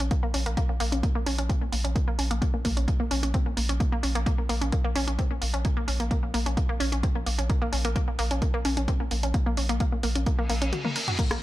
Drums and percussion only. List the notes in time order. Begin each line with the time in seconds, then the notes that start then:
0.00 closed hi-hat
0.11 kick, closed hi-hat
0.34 open hi-hat
0.46 closed hi-hat
0.57 kick, closed hi-hat
0.80 open hi-hat
0.92 closed hi-hat
1.03 kick, closed hi-hat
1.26 open hi-hat
1.38 closed hi-hat
1.49 kick, closed hi-hat
1.73 open hi-hat
1.85 closed hi-hat
1.96 kick, closed hi-hat
2.19 open hi-hat
2.31 closed hi-hat
2.42 kick, closed hi-hat
2.65 kick, open hi-hat
2.77 closed hi-hat
2.88 kick, closed hi-hat
3.11 open hi-hat
3.23 closed hi-hat
3.34 kick, closed hi-hat
3.57 open hi-hat
3.69 closed hi-hat
3.80 kick, closed hi-hat
4.03 open hi-hat
4.15 closed hi-hat
4.26 kick, closed hi-hat
4.49 open hi-hat
4.62 closed hi-hat
4.72 kick, closed hi-hat
4.96 open hi-hat
5.08 closed hi-hat
5.19 kick, closed hi-hat
5.42 open hi-hat
5.54 closed hi-hat
5.65 kick, closed hi-hat
5.88 open hi-hat
6.00 closed hi-hat
6.11 kick, closed hi-hat
6.34 open hi-hat
6.46 closed hi-hat
6.57 kick, closed hi-hat
6.80 open hi-hat
6.92 closed hi-hat
7.03 kick, closed hi-hat
7.26 open hi-hat
7.39 closed hi-hat
7.50 kick, closed hi-hat
7.73 open hi-hat
7.85 closed hi-hat
7.96 kick, closed hi-hat
8.19 open hi-hat
8.31 closed hi-hat
8.42 kick, closed hi-hat
8.65 open hi-hat
8.77 closed hi-hat
8.88 kick, closed hi-hat
9.11 open hi-hat
9.23 closed hi-hat
9.34 kick, closed hi-hat
9.57 open hi-hat
9.69 closed hi-hat
9.80 kick, closed hi-hat
10.03 open hi-hat
10.15 closed hi-hat
10.26 kick, closed hi-hat
10.49 open hi-hat
10.62 closed hi-hat
10.73 closed hi-hat, high tom
10.85 high tom
10.96 open hi-hat
11.08 closed hi-hat, mid tom
11.19 kick, closed hi-hat, crash, shaker
11.31 cross-stick, closed hi-hat, shaker